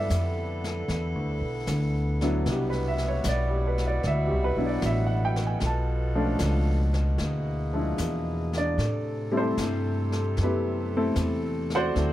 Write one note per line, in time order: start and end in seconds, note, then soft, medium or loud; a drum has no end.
0.00 2.42 D3 medium
0.00 2.48 F3 medium
0.00 2.48 A3 medium
0.00 2.22 B3 medium
0.00 7.02 B3 medium
0.00 2.23 E4 medium
0.00 2.42 E4 medium
0.00 2.47 G4 medium
0.00 2.42 A4 medium
0.00 2.48 B4 medium
0.00 2.47 D5 medium
0.00 1.11 E5 medium
0.10 0.86 F2 medium
0.10 snare medium
0.10 hi-hat pedal medium
0.64 snare soft
0.88 1.15 E2 medium
0.88 brush sweep soft
0.88 snare soft
1.15 1.40 D2 medium
1.41 1.66 B1 medium
1.67 2.43 D2 medium
1.67 snare soft
1.67 hi-hat pedal soft
2.21 3.20 F#3 medium
2.21 3.20 B3 medium
2.21 3.20 D4 medium
2.21 3.20 E4 medium
2.21 snare soft
2.46 3.22 C2 medium
2.46 8.75 B2 medium
2.46 5.59 E4 medium
2.46 5.58 F#4 medium
2.46 brush sweep soft
2.46 snare soft
2.51 2.75 G4 medium
2.70 2.97 B4 medium
2.70 snare soft
2.88 3.06 E5 medium
2.98 snare soft
3.08 3.22 C#5 medium
3.24 4.01 B1 medium
3.24 snare medium
3.24 hi-hat pedal medium
3.29 3.53 D5 medium
3.49 3.77 G4 soft
3.67 3.85 B4 medium
3.78 snare soft
3.87 4.01 D5 medium
4.03 4.31 D2 medium
4.03 4.32 E5 medium
4.03 brush sweep soft
4.03 snare soft
4.27 4.56 C2 medium
4.27 4.55 G4 medium
4.44 4.63 B4 medium
4.56 4.81 B1 medium
4.56 4.80 F#3 medium
4.56 4.80 B3 medium
4.56 4.80 D4 medium
4.56 4.80 E4 medium
4.66 4.80 D5 medium
4.82 5.59 A1 medium
4.82 5.10 E5 medium
4.82 snare soft
4.82 hi-hat pedal soft
5.07 5.34 F#5 medium
5.25 5.43 G5 medium
5.36 snare soft
5.47 5.60 G#5 medium
5.60 6.38 B1 medium
5.60 7.02 F4 medium
5.60 7.02 A4 medium
5.60 brush sweep soft
5.60 snare soft
5.66 7.18 A5 medium
6.15 6.38 F3 medium
6.15 6.38 A3 medium
6.15 6.38 C#4 medium
6.15 6.38 D4 medium
6.39 7.17 C#2 medium
6.39 snare medium
6.39 hi-hat pedal medium
6.94 snare soft
7.18 7.97 D2 medium
7.18 8.77 A#3 medium
7.18 8.77 E4 medium
7.18 8.77 G#4 medium
7.18 brush sweep soft
7.18 snare soft
7.73 7.96 F3 medium
7.73 7.97 G#3 soft
7.73 7.97 D4 medium
7.73 7.97 E4 medium
7.98 8.76 E2 medium
7.98 snare soft
7.98 hi-hat pedal medium
8.53 snare soft
8.58 9.32 D4 medium
8.58 9.31 D5 medium
8.78 9.55 A2 medium
8.78 11.93 C3 medium
8.78 11.93 A3 medium
8.78 12.13 A4 medium
8.78 brush sweep soft
8.78 snare soft
9.32 10.32 G3 medium
9.32 10.32 A3 medium
9.32 9.36 C4 medium
9.32 10.32 E4 medium
9.37 10.36 C4 medium
9.37 10.36 G4 medium
9.37 10.36 A4 medium
9.37 10.36 C5 medium
9.57 10.35 G2 medium
9.57 snare medium
9.57 hi-hat pedal soft
10.12 snare soft
10.37 11.15 F#2 medium
10.37 brush sweep soft
10.37 snare soft
10.43 10.93 B3 medium
10.43 10.93 E4 medium
10.43 10.93 G4 medium
10.43 10.93 B4 medium
10.97 11.19 A3 medium
10.97 11.19 C4 medium
10.97 11.19 E4 medium
10.97 11.19 A4 medium
11.16 11.93 E2 medium
11.16 snare medium
11.16 hi-hat pedal medium
11.70 snare soft
11.75 12.13 F#4 medium
11.75 12.13 C5 medium
11.75 12.13 D5 medium
11.75 12.13 F#5 loud
11.94 12.13 D2 medium
11.94 12.13 F#3 medium
11.94 12.13 A3 soft
11.94 12.13 C4 medium
11.94 12.13 C4 soft
11.94 12.13 D4 medium
11.94 12.13 E4 medium
11.94 brush sweep soft
11.94 snare soft